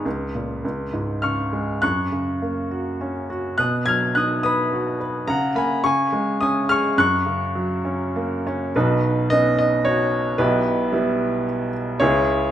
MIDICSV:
0, 0, Header, 1, 2, 480
1, 0, Start_track
1, 0, Key_signature, 6, "major"
1, 0, Tempo, 590551
1, 44, Time_signature, 3, 2, 24, 8
1, 2445, Tempo, 567108
1, 5805, Tempo, 589971
1, 7245, Tempo, 540541
1, 7246, Key_signature, 5, "major"
1, 10589, End_track
2, 0, Start_track
2, 0, Title_t, "Grand piano"
2, 0, Program_c, 0, 0
2, 0, Control_c, 0, 64, 127
2, 0, Note_on_c, 0, 83, 45
2, 0, Note_on_c, 0, 87, 51
2, 44, Note_on_c, 0, 37, 49
2, 55, Control_c, 0, 64, 0
2, 205, Control_c, 0, 64, 127
2, 283, Note_on_c, 0, 46, 36
2, 505, Note_off_c, 0, 37, 0
2, 512, Note_off_c, 0, 46, 0
2, 525, Note_on_c, 0, 37, 49
2, 527, Control_c, 0, 64, 0
2, 685, Control_c, 0, 64, 127
2, 758, Note_on_c, 0, 44, 39
2, 969, Note_off_c, 0, 83, 0
2, 992, Note_on_c, 0, 89, 63
2, 1002, Note_on_c, 0, 49, 36
2, 1003, Note_on_c, 0, 85, 49
2, 1040, Note_off_c, 0, 87, 0
2, 1242, Note_on_c, 0, 56, 42
2, 1447, Note_off_c, 0, 89, 0
2, 1453, Note_off_c, 0, 85, 0
2, 1457, Note_off_c, 0, 37, 0
2, 1462, Note_off_c, 0, 44, 0
2, 1470, Note_off_c, 0, 49, 0
2, 1476, Note_off_c, 0, 56, 0
2, 1477, Note_on_c, 0, 90, 72
2, 1487, Note_on_c, 0, 42, 49
2, 1489, Note_on_c, 0, 85, 52
2, 1493, Control_c, 0, 64, 0
2, 1646, Control_c, 0, 64, 127
2, 1724, Note_on_c, 0, 49, 36
2, 1966, Note_on_c, 0, 58, 42
2, 2204, Note_on_c, 0, 66, 46
2, 2446, Note_on_c, 0, 61, 44
2, 2662, Note_off_c, 0, 49, 0
2, 2678, Note_off_c, 0, 66, 0
2, 2691, Note_on_c, 0, 66, 49
2, 2902, Note_off_c, 0, 42, 0
2, 2903, Note_off_c, 0, 85, 0
2, 2905, Note_off_c, 0, 58, 0
2, 2913, Note_off_c, 0, 90, 0
2, 2920, Note_off_c, 0, 61, 0
2, 2926, Note_off_c, 0, 66, 0
2, 2926, Note_on_c, 0, 90, 73
2, 2934, Note_on_c, 0, 47, 55
2, 2945, Note_on_c, 0, 87, 54
2, 2946, Control_c, 0, 64, 0
2, 3109, Control_c, 0, 64, 127
2, 3162, Note_on_c, 0, 92, 82
2, 3164, Note_off_c, 0, 87, 0
2, 3171, Note_on_c, 0, 54, 41
2, 3178, Note_off_c, 0, 90, 0
2, 3185, Note_on_c, 0, 89, 61
2, 3407, Note_off_c, 0, 89, 0
2, 3411, Note_on_c, 0, 90, 76
2, 3420, Note_off_c, 0, 92, 0
2, 3421, Note_on_c, 0, 63, 41
2, 3432, Note_on_c, 0, 87, 63
2, 3639, Note_off_c, 0, 87, 0
2, 3641, Note_off_c, 0, 90, 0
2, 3651, Note_on_c, 0, 87, 75
2, 3660, Note_on_c, 0, 71, 48
2, 3672, Note_on_c, 0, 83, 60
2, 3896, Note_on_c, 0, 66, 46
2, 4098, Note_off_c, 0, 87, 0
2, 4106, Note_off_c, 0, 54, 0
2, 4109, Note_off_c, 0, 83, 0
2, 4121, Note_off_c, 0, 71, 0
2, 4134, Note_on_c, 0, 71, 49
2, 4338, Note_off_c, 0, 47, 0
2, 4344, Note_off_c, 0, 63, 0
2, 4355, Note_off_c, 0, 66, 0
2, 4363, Note_off_c, 0, 71, 0
2, 4364, Note_on_c, 0, 49, 64
2, 4364, Note_on_c, 0, 82, 73
2, 4383, Control_c, 0, 64, 0
2, 4383, Note_on_c, 0, 78, 54
2, 4541, Control_c, 0, 64, 127
2, 4597, Note_off_c, 0, 78, 0
2, 4599, Note_on_c, 0, 58, 46
2, 4605, Note_on_c, 0, 83, 69
2, 4610, Note_off_c, 0, 82, 0
2, 4623, Note_on_c, 0, 80, 51
2, 4825, Note_off_c, 0, 49, 0
2, 4831, Note_off_c, 0, 58, 0
2, 4835, Note_off_c, 0, 80, 0
2, 4839, Note_on_c, 0, 85, 76
2, 4841, Note_on_c, 0, 49, 58
2, 4849, Note_off_c, 0, 83, 0
2, 4854, Control_c, 0, 64, 0
2, 4860, Note_on_c, 0, 80, 61
2, 5003, Control_c, 0, 64, 127
2, 5083, Note_on_c, 0, 56, 45
2, 5299, Note_off_c, 0, 80, 0
2, 5320, Note_on_c, 0, 87, 76
2, 5326, Note_on_c, 0, 61, 44
2, 5336, Note_off_c, 0, 85, 0
2, 5338, Note_on_c, 0, 80, 58
2, 5547, Note_off_c, 0, 87, 0
2, 5557, Note_off_c, 0, 80, 0
2, 5563, Note_on_c, 0, 89, 88
2, 5564, Note_on_c, 0, 68, 56
2, 5582, Note_on_c, 0, 85, 69
2, 5777, Note_off_c, 0, 49, 0
2, 5785, Note_off_c, 0, 56, 0
2, 5794, Note_off_c, 0, 61, 0
2, 5798, Note_off_c, 0, 68, 0
2, 5798, Note_off_c, 0, 85, 0
2, 5804, Note_on_c, 0, 42, 61
2, 5808, Note_on_c, 0, 90, 81
2, 5812, Note_off_c, 0, 89, 0
2, 5816, Control_c, 0, 64, 0
2, 5823, Note_on_c, 0, 85, 70
2, 5956, Control_c, 0, 64, 127
2, 6035, Note_on_c, 0, 49, 50
2, 6272, Note_on_c, 0, 54, 52
2, 6513, Note_on_c, 0, 61, 49
2, 6767, Note_on_c, 0, 58, 51
2, 6979, Note_off_c, 0, 90, 0
2, 6980, Note_off_c, 0, 49, 0
2, 6987, Note_off_c, 0, 85, 0
2, 7003, Note_off_c, 0, 61, 0
2, 7015, Note_on_c, 0, 61, 58
2, 7212, Note_off_c, 0, 42, 0
2, 7215, Note_off_c, 0, 54, 0
2, 7233, Note_off_c, 0, 58, 0
2, 7241, Note_off_c, 0, 61, 0
2, 7252, Note_on_c, 0, 47, 55
2, 7254, Note_on_c, 0, 35, 58
2, 7255, Note_on_c, 0, 71, 67
2, 7258, Note_on_c, 0, 63, 56
2, 7258, Note_on_c, 0, 66, 54
2, 7259, Control_c, 0, 64, 0
2, 7427, Control_c, 0, 64, 127
2, 7736, Note_on_c, 0, 75, 88
2, 7740, Note_off_c, 0, 63, 0
2, 7746, Note_on_c, 0, 59, 42
2, 7752, Note_on_c, 0, 61, 42
2, 7753, Note_on_c, 0, 63, 44
2, 7760, Note_off_c, 0, 71, 0
2, 7955, Note_off_c, 0, 66, 0
2, 7965, Note_off_c, 0, 75, 0
2, 7989, Note_on_c, 0, 75, 75
2, 8212, Note_off_c, 0, 59, 0
2, 8216, Note_off_c, 0, 61, 0
2, 8216, Note_off_c, 0, 63, 0
2, 8221, Note_on_c, 0, 73, 81
2, 8234, Note_off_c, 0, 75, 0
2, 8235, Note_on_c, 0, 66, 52
2, 8666, Note_off_c, 0, 73, 0
2, 8669, Note_off_c, 0, 47, 0
2, 8670, Note_off_c, 0, 35, 0
2, 8674, Note_off_c, 0, 66, 0
2, 8696, Note_on_c, 0, 71, 77
2, 8700, Note_on_c, 0, 35, 65
2, 8701, Note_on_c, 0, 47, 66
2, 8712, Note_on_c, 0, 64, 53
2, 8712, Note_on_c, 0, 67, 46
2, 8714, Control_c, 0, 64, 0
2, 8881, Control_c, 0, 64, 127
2, 9169, Note_off_c, 0, 64, 0
2, 9174, Note_on_c, 0, 55, 52
2, 9181, Note_on_c, 0, 59, 40
2, 9183, Note_on_c, 0, 64, 51
2, 9645, Note_off_c, 0, 55, 0
2, 9649, Note_off_c, 0, 59, 0
2, 9650, Note_off_c, 0, 64, 0
2, 9864, Note_off_c, 0, 71, 0
2, 9872, Note_off_c, 0, 67, 0
2, 10102, Note_off_c, 0, 35, 0
2, 10102, Note_off_c, 0, 47, 0
2, 10129, Note_on_c, 0, 73, 88
2, 10137, Note_on_c, 0, 37, 70
2, 10139, Note_on_c, 0, 49, 73
2, 10149, Note_on_c, 0, 64, 63
2, 10150, Control_c, 0, 64, 0
2, 10150, Note_on_c, 0, 68, 67
2, 10306, Control_c, 0, 64, 127
2, 10589, Note_off_c, 0, 37, 0
2, 10589, Note_off_c, 0, 49, 0
2, 10589, Note_off_c, 0, 64, 0
2, 10589, Note_off_c, 0, 68, 0
2, 10589, Note_off_c, 0, 73, 0
2, 10589, End_track
0, 0, End_of_file